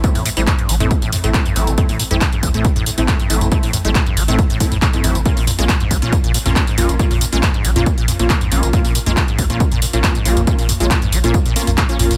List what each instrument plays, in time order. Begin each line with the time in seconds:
0.04 acid bass A2, synth stab A3 C4 E4, kick, closed hi-hat, tambourine
0.15 sub bass A1, acid bass A2, mid tom, open hi-hat, tambourine
0.26 acid bass A2, open hi-hat, tambourine
0.37 sub bass A1, acid bass G3, synth stab A3 C4 E4, closed hi-hat, tambourine
0.47 acid bass B2, kick, clap, closed hi-hat, mid tom, tambourine
0.59 acid bass G2, closed hi-hat
0.69 sub bass A1, acid bass G3, open hi-hat, tambourine
0.80 sub bass A1, acid bass A2, synth stab A3 C4 E4, closed hi-hat, mid tom, tambourine
0.91 acid bass B2, kick, closed hi-hat, tambourine
1.02 sub bass A1, acid bass A2, closed hi-hat, tambourine
1.12 acid bass A2, mid tom, open hi-hat, tambourine
1.24 sub bass A1, acid bass A2, synth stab A3 C4 E4, closed hi-hat, tambourine
1.34 acid bass B2, kick, clap, closed hi-hat, tambourine
1.46 acid bass G2, closed hi-hat, mid tom, tambourine
1.56 sub bass A1, acid bass G3, synth stab A3 C4 E4, open hi-hat, tambourine
1.67 sub bass A1, acid bass A2, closed hi-hat, tambourine
1.78 acid bass A2, synth stab A3 C4 E4, kick, closed hi-hat, mid tom, tambourine
1.89 sub bass A1, acid bass A2, open hi-hat, tambourine
1.99 acid bass A2, open hi-hat, tambourine
2.11 sub bass A1, acid bass G3, synth stab A3 C4 E4, closed hi-hat, mid tom, tambourine
2.21 acid bass B2, kick, clap, closed hi-hat, tambourine
2.32 acid bass G2, closed hi-hat
2.43 sub bass A1, acid bass G3, kick, mid tom, open hi-hat, tambourine
2.54 sub bass A1, acid bass A2, synth stab A3 C4 E4, closed hi-hat, tambourine
2.65 acid bass B2, kick, closed hi-hat, tambourine
2.76 sub bass A1, acid bass A2, closed hi-hat, mid tom, tambourine
2.86 acid bass A2, open hi-hat, tambourine
2.98 sub bass A1, acid bass A2, synth stab A3 C4 E4, closed hi-hat, tambourine
3.08 acid bass B2, kick, clap, closed hi-hat, mid tom, tambourine
3.20 acid bass G2, closed hi-hat, tambourine
3.30 sub bass A1, acid bass G3, synth stab A3 C4 E4, open hi-hat, tambourine
3.41 sub bass A1, acid bass A2, closed hi-hat, mid tom, tambourine
3.52 acid bass A2, synth stab A3 C4 E4, kick, closed hi-hat, tambourine
3.63 sub bass A1, acid bass A2, open hi-hat, tambourine
3.73 acid bass A2, mid tom, open hi-hat, tambourine
3.85 sub bass A1, acid bass G3, synth stab A3 C4 E4, closed hi-hat, tambourine
3.95 acid bass B2, kick, clap, closed hi-hat, tambourine
4.06 acid bass G2, closed hi-hat, mid tom
4.17 sub bass A1, acid bass G3, open hi-hat, tambourine
4.28 sub bass A1, acid bass A2, synth stab A3 C4 E4, closed hi-hat, tambourine
4.39 acid bass B2, kick, closed hi-hat, mid tom, tambourine
4.50 sub bass A1, acid bass A2, closed hi-hat, tambourine
4.60 acid bass A2, synth stab A3 C4 E4, kick, open hi-hat, tambourine
4.72 sub bass A1, acid bass A2, closed hi-hat, mid tom, tambourine
4.82 acid bass B2, kick, clap, closed hi-hat, tambourine
4.93 acid bass G2, synth stab A3 C4 E4, closed hi-hat, tambourine
5.04 sub bass A1, acid bass G3, synth stab A3 C4 E4, mid tom, open hi-hat, tambourine
5.15 sub bass A1, acid bass A2, closed hi-hat, tambourine
5.26 acid bass A#2, synth stab A#3 C#4 F4, kick, closed hi-hat, tambourine
5.37 sub bass A#1, acid bass A#2, open hi-hat, tambourine
5.47 acid bass A#2, mid tom, open hi-hat, tambourine
5.59 sub bass A#1, acid bass G#3, synth stab A#3 C#4 F4, closed hi-hat, tambourine
5.69 acid bass C3, kick, clap, closed hi-hat, tambourine
5.80 acid bass G#2, closed hi-hat, mid tom
5.91 sub bass A#1, acid bass G#3, kick, open hi-hat, tambourine
6.02 sub bass A#1, acid bass A#2, synth stab A#3 C#4 F4, closed hi-hat, tambourine
6.13 acid bass C3, kick, closed hi-hat, mid tom, tambourine
6.24 sub bass A#1, acid bass A#2, closed hi-hat, tambourine
6.34 acid bass A#2, open hi-hat, tambourine
6.46 sub bass A#1, acid bass A#2, synth stab A#3 C#4 F4, closed hi-hat, mid tom, tambourine
6.56 acid bass C3, kick, clap, closed hi-hat, tambourine
6.67 acid bass G#2, closed hi-hat, tambourine
6.78 sub bass A#1, acid bass G#3, synth stab A#3 C#4 F4, mid tom, open hi-hat, tambourine
6.89 sub bass A#1, acid bass A#2, closed hi-hat, tambourine
6.99 acid bass A#2, synth stab A#3 C#4 F4, kick, closed hi-hat, tambourine
7.11 sub bass A#1, acid bass A#2, mid tom, open hi-hat, tambourine
7.21 acid bass A#2, open hi-hat, tambourine
7.32 sub bass A#1, acid bass G#3, synth stab A#3 C#4 F4, closed hi-hat, tambourine
7.43 acid bass C3, kick, clap, closed hi-hat, mid tom, tambourine
7.54 acid bass G#2, closed hi-hat
7.65 sub bass A#1, acid bass G#3, open hi-hat, tambourine
7.76 sub bass A#1, acid bass A#2, synth stab A#3 C#4 F4, closed hi-hat, mid tom, tambourine
7.86 acid bass C3, kick, closed hi-hat, tambourine
7.98 sub bass A#1, acid bass A#2, closed hi-hat, tambourine
8.08 acid bass A#2, mid tom, open hi-hat, tambourine
8.19 sub bass A#1, acid bass A#2, synth stab A#3 C#4 F4, closed hi-hat, tambourine
8.30 acid bass C3, kick, clap, closed hi-hat, tambourine
8.41 acid bass G#2, closed hi-hat, mid tom, tambourine
8.52 sub bass A#1, acid bass G#3, synth stab A#3 C#4 F4, open hi-hat, tambourine
8.63 sub bass A#1, acid bass A#2, closed hi-hat, tambourine
8.73 acid bass A#2, synth stab A#3 C#4 F4, kick, closed hi-hat, mid tom, tambourine
8.85 sub bass A#1, acid bass A#2, open hi-hat, tambourine
8.95 acid bass A#2, open hi-hat, tambourine
9.06 sub bass A#1, acid bass G#3, synth stab A#3 C#4 F4, closed hi-hat, mid tom, tambourine
9.17 acid bass C3, kick, clap, closed hi-hat, tambourine
9.28 acid bass G#2, closed hi-hat
9.39 sub bass A#1, acid bass G#3, kick, mid tom, open hi-hat, tambourine
9.50 sub bass A#1, acid bass A#2, synth stab A#3 C#4 F4, closed hi-hat, tambourine
9.60 acid bass C3, kick, closed hi-hat, tambourine
9.72 sub bass A#1, acid bass A#2, closed hi-hat, mid tom, tambourine
9.82 acid bass A#2, open hi-hat, tambourine
9.93 sub bass A#1, acid bass A#2, synth stab A#3 C#4 F4, closed hi-hat, tambourine
10.04 acid bass C3, kick, clap, closed hi-hat, mid tom, tambourine
10.15 acid bass G#2, closed hi-hat, tambourine
10.25 sub bass A#1, acid bass G#3, synth stab A#3 C#4 F4, open hi-hat, tambourine
10.37 sub bass A#1, acid bass A#2, closed hi-hat, mid tom, tambourine
10.47 acid bass A#2, synth stab A#3 C#4 F4, kick, closed hi-hat, tambourine
10.59 sub bass A#1, acid bass A#2, open hi-hat, tambourine
10.69 acid bass A#2, mid tom, open hi-hat, tambourine
10.80 sub bass A#1, acid bass G#3, synth stab A#3 C#4 F4, closed hi-hat, tambourine
10.91 acid bass C3, kick, clap, closed hi-hat, tambourine
11.02 acid bass G#2, closed hi-hat, mid tom, tambourine
11.12 sub bass A#1, acid bass G#3, open hi-hat, tambourine
11.24 sub bass A#1, acid bass A#2, synth stab A#3 C#4 F4, closed hi-hat, tambourine
11.34 acid bass C3, kick, closed hi-hat, mid tom, tambourine
11.46 sub bass A#1, acid bass A#2, closed hi-hat, tambourine
11.56 synth stab A#3 C#4 F4, acid bass A#3, open hi-hat, tambourine
11.67 sub bass A#1, acid bass A#3, closed hi-hat, mid tom, tambourine
11.78 acid bass A#2, kick, clap, closed hi-hat, tambourine
11.89 synth stab A#3 C#4 F4, acid bass C#4, closed hi-hat, tambourine
11.99 sub bass A#1, acid bass A#2, synth stab A#3 C#4 F4, mid tom, open hi-hat, tambourine
12.11 sub bass A#1, acid bass A#2, closed hi-hat, tambourine